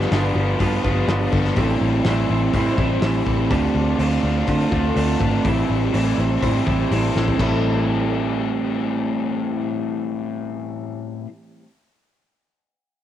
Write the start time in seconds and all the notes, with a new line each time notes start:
Already playing: G2 D3 F3 B3 D4 F4 G4
0.01 snare
0.11 G1 G2 D3 F3 B3 D4 F4 A4, snare, open hi-hat
0.35 G1 F3 B3 F4
0.59 G2 D3 F3 B3 D4 F4 B4, kick, open hi-hat
0.83 G1 B3 D4 F4 G4, kick
0.88 F3
1.08 G1 G2 D3 F3 B3 D4 F4, snare, open hi-hat
1.32 G1 F3 B3 D4 A4, kick
1.44 snare
1.56 A1 A2 E3 G3 A3 C4 E4 G4, kick, open hi-hat
1.81 A1
2.05 A1 A2 E3 G3 A3 C4 E4 A4, snare, open hi-hat
2.30 A1 G3 C4 E4
2.53 A2 E3 G3 A3 C4 E4 C5, kick, open hi-hat
2.78 A1 G3 A3 C4 E4 G4, kick
3.02 A1 A2 E3 G3 A3 C4 E4, snare, open hi-hat
3.26 A1 A3 C4 E4 A4, kick
3.50 D2 D3 A3 C4 D4 F4 G4, kick, open hi-hat
3.74 D2
3.98 D2 D3 A3 C4 D4 F4 A4, open hi-hat
4.23 D2 A3 C4 F4
4.47 D3 A3 C4 D4 F4 C5, kick, open hi-hat
4.71 D2 A3 C4 D4 F4 A4, kick
4.96 D2 D3 A3 C4 D4 F4, open hi-hat
5.19 G#1 D4 F4 B4, kick
5.24 A3
5.44 A1 A2 E3 G3 A3 C4 E4 G4, kick, open hi-hat
5.70 A1
5.92 A1 A2 E3 G3 A3 C4 A4, open hi-hat
5.97 E4
6.18 A1 G3 C4 E4
6.42 A2 E3 G3 A3 C4 E4 C5, kick, open hi-hat
6.66 A1 G3 A3 C4 E4 G4, kick
6.91 A1 A2 E3 G3 A3 C4 E4, open hi-hat
7.15 A1 A3 C4 E4 A4, snare
7.28 floor tom
7.39 A1 A2 E3 G3 A3 C4 E4 A4, kick, crash